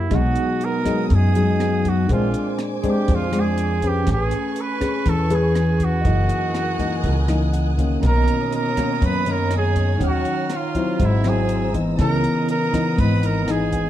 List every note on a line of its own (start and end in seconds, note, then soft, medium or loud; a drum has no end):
0.00 0.13 E4 soft
0.00 0.16 E4 medium
0.00 0.12 G4 soft
0.00 0.10 A#4 soft
0.00 0.11 F#5 medium
0.09 0.34 B1 medium
0.09 1.08 B2 medium
0.09 0.81 F#3 medium
0.09 0.82 G#3 medium
0.09 2.07 B3 medium
0.09 1.58 B3 soft
0.09 1.56 D#4 medium
0.09 0.82 D#4 medium
0.09 1.57 G#4 soft
0.09 6.01 G#5 medium
0.09 2.08 D#6 medium
0.09 kick medium
0.09 cross-stick medium
0.09 closed hi-hat medium
0.14 0.66 F#4 medium
0.14 1.59 F#5 medium
0.35 closed hi-hat soft
0.61 1.08 A#4 loud
0.61 closed hi-hat soft
0.85 1.31 F#3 medium
0.85 1.31 G#3 medium
0.85 1.31 D#4 medium
0.85 kick soft
0.85 cross-stick medium
0.85 closed hi-hat soft
1.08 2.07 F#2 medium
1.08 2.05 F#2 medium
1.08 1.16 A#4 medium
1.08 kick medium
1.08 closed hi-hat medium
1.14 1.90 G#4 loud
1.35 2.06 F#3 medium
1.35 2.06 G#3 medium
1.35 2.06 D#4 medium
1.35 closed hi-hat soft
1.59 2.09 D#4 soft
1.59 2.10 G#4 soft
1.59 2.10 B4 soft
1.59 2.11 F#5 soft
1.59 cross-stick medium
1.59 closed hi-hat soft
1.85 2.11 F#4 medium
1.85 kick soft
1.85 closed hi-hat soft
2.07 2.33 A#1 medium
2.07 3.06 A#2 medium
2.07 2.80 G#3 medium
2.07 4.02 D4 soft
2.07 4.03 A#4 soft
2.07 4.06 C5 medium
2.07 4.05 D6 medium
2.07 kick medium
2.07 closed hi-hat medium
2.11 2.80 C4 medium
2.11 2.81 D4 medium
2.11 2.57 F4 medium
2.11 4.04 C5 soft
2.11 4.05 G#5 medium
2.34 closed hi-hat soft
2.59 cross-stick medium
2.59 closed hi-hat soft
2.80 3.29 G#3 medium
2.80 2.91 G#4 medium
2.80 kick soft
2.80 closed hi-hat soft
2.84 3.29 C4 medium
2.84 3.29 D4 medium
2.90 3.16 G4 medium
3.08 4.03 F2 medium
3.08 4.05 F3 medium
3.08 kick medium
3.08 closed hi-hat medium
3.15 3.41 F4 medium
3.32 3.78 G#3 medium
3.32 3.78 C4 medium
3.32 3.79 D4 medium
3.32 cross-stick medium
3.32 closed hi-hat soft
3.40 3.89 G#4 medium
3.58 closed hi-hat soft
3.82 4.78 C#4 medium
3.82 4.78 G#4 medium
3.82 4.78 B4 medium
3.82 kick soft
3.82 closed hi-hat soft
3.88 4.10 G4 medium
4.04 5.99 C#4 soft
4.04 6.02 B4 medium
4.04 6.03 C#6 medium
4.04 kick medium
4.04 cross-stick medium
4.04 closed hi-hat medium
4.08 4.31 A1 medium
4.08 5.04 A3 medium
4.08 6.02 B4 soft
4.08 6.03 G#5 medium
4.12 4.62 G#4 medium
4.31 closed hi-hat soft
4.56 closed hi-hat soft
4.61 5.10 B4 loud
4.81 5.27 C#4 medium
4.81 5.27 G#4 medium
4.81 5.27 B4 medium
4.81 kick soft
4.81 cross-stick medium
4.81 closed hi-hat soft
5.06 6.01 E2 medium
5.06 6.03 E3 medium
5.06 5.36 A4 loud
5.06 kick medium
5.06 closed hi-hat medium
5.30 6.01 C#4 medium
5.30 6.01 G#4 medium
5.30 6.01 B4 medium
5.30 closed hi-hat soft
5.34 5.85 G#4 loud
5.55 cross-stick medium
5.55 closed hi-hat soft
5.80 kick soft
5.80 closed hi-hat soft
5.84 7.55 F#4 medium
6.01 6.28 F#1 medium
6.01 7.01 F#2 medium
6.01 6.75 E3 medium
6.01 6.75 A#3 medium
6.01 7.99 G#4 soft
6.01 7.97 D#5 medium
6.01 8.01 D#6 medium
6.01 kick medium
6.01 closed hi-hat medium
6.05 6.76 D#4 medium
6.05 8.00 E4 medium
6.05 7.99 A#4 soft
6.05 8.02 A#4 medium
6.05 8.01 G#5 medium
6.05 8.02 F#6 medium
6.29 closed hi-hat soft
6.55 cross-stick medium
6.55 closed hi-hat soft
6.79 7.25 E3 medium
6.79 7.25 A#3 medium
6.79 7.25 D#4 medium
6.79 kick soft
6.79 closed hi-hat soft
7.04 7.99 C#2 medium
7.04 8.00 C#3 medium
7.04 kick medium
7.04 closed hi-hat medium
7.28 7.74 E3 medium
7.28 7.75 A#3 medium
7.28 7.75 D#4 medium
7.28 cross-stick medium
7.28 closed hi-hat soft
7.53 7.99 F#5 medium
7.53 closed hi-hat soft
7.78 8.73 D#3 medium
7.78 8.74 A#3 medium
7.78 8.74 C#4 medium
7.78 kick soft
7.78 closed hi-hat soft
8.00 8.26 B1 medium
8.00 9.00 B2 medium
8.00 9.96 C#4 soft
8.00 9.97 A#4 soft
8.00 10.97 C#5 medium
8.00 9.98 A#5 medium
8.00 8.49 A#5 medium
8.00 9.99 D#6 medium
8.00 kick medium
8.00 cross-stick medium
8.00 closed hi-hat medium
8.04 9.98 B3 soft
8.04 8.50 A#4 loud
8.04 9.98 D#5 medium
8.28 closed hi-hat soft
8.52 9.07 A#4 medium
8.52 8.99 A#5 medium
8.52 closed hi-hat soft
8.77 9.23 D#3 medium
8.77 9.23 A#3 medium
8.77 9.23 C#4 medium
8.77 kick soft
8.77 cross-stick medium
8.77 closed hi-hat soft
9.01 9.98 F#2 medium
9.01 9.97 F#2 medium
9.01 9.33 B4 loud
9.01 9.28 B5 medium
9.01 kick medium
9.01 closed hi-hat medium
9.26 9.97 D#3 medium
9.26 9.97 A#3 medium
9.26 9.97 C#4 medium
9.26 9.53 A#5 medium
9.26 closed hi-hat soft
9.31 9.54 A#4 medium
9.51 9.98 G#5 medium
9.51 cross-stick medium
9.51 closed hi-hat soft
9.57 10.01 G#4 medium
9.76 kick soft
9.76 closed hi-hat soft
9.98 10.24 D#2 medium
9.98 10.97 D#3 medium
9.98 10.50 F#3 medium
9.98 10.50 C#4 medium
9.98 10.96 D#4 soft
9.98 10.98 C#5 soft
9.98 11.97 A#5 medium
9.98 10.99 F6 medium
9.98 kick medium
9.98 closed hi-hat medium
10.02 10.48 F#5 medium
10.02 11.00 F6 medium
10.06 10.57 F#4 medium
10.25 closed hi-hat soft
10.50 11.01 F5 medium
10.50 cross-stick medium
10.50 closed hi-hat soft
10.56 11.07 F4 medium
10.75 11.21 F#3 medium
10.75 11.21 C4 medium
10.75 11.21 E4 medium
10.75 kick soft
10.75 closed hi-hat soft
10.97 11.95 G#1 medium
10.97 11.96 G#2 medium
10.97 11.96 E4 soft
10.97 11.96 G#4 soft
10.97 11.98 C5 medium
10.97 11.97 C5 soft
10.97 11.98 E6 medium
10.97 kick medium
10.97 closed hi-hat medium
11.02 11.30 E4 medium
11.02 11.26 E5 medium
11.02 11.99 F#5 soft
11.24 11.71 F#3 medium
11.24 11.71 C4 medium
11.24 11.71 E4 medium
11.24 11.75 G#5 medium
11.24 cross-stick medium
11.24 closed hi-hat soft
11.29 11.76 G#4 medium
11.49 closed hi-hat soft
11.74 12.69 E3 medium
11.74 12.69 B3 medium
11.74 12.69 D#4 medium
11.74 kick soft
11.74 closed hi-hat soft
11.96 12.22 C#2 medium
11.96 12.96 C#3 medium
11.96 13.90 B3 medium
11.96 13.90 B3 soft
11.96 13.90 C#5 soft
11.96 13.90 D#5 medium
11.96 12.45 A#5 medium
11.96 13.90 D#6 medium
11.96 kick medium
11.96 cross-stick medium
11.96 closed hi-hat medium
12.01 13.90 E4 medium
12.01 12.46 A#4 loud
12.24 closed hi-hat soft
12.48 13.01 A#4 loud
12.48 12.94 A#5 medium
12.48 closed hi-hat soft
12.73 13.44 E3 medium
12.73 13.44 B3 medium
12.73 13.44 D#4 medium
12.73 kick soft
12.73 cross-stick medium
12.73 closed hi-hat soft
12.97 13.90 G#1 medium
12.97 13.90 G#2 medium
12.97 13.27 B4 loud
12.97 13.23 B5 medium
12.97 kick medium
12.97 closed hi-hat medium
13.23 13.52 A#4 medium
13.23 13.48 A#5 medium
13.23 closed hi-hat soft
13.47 13.90 E3 medium
13.47 13.90 B3 medium
13.47 13.90 D#4 medium
13.47 13.90 G#4 loud
13.47 13.90 G#5 medium
13.47 cross-stick medium
13.47 closed hi-hat soft
13.72 kick soft
13.72 closed hi-hat soft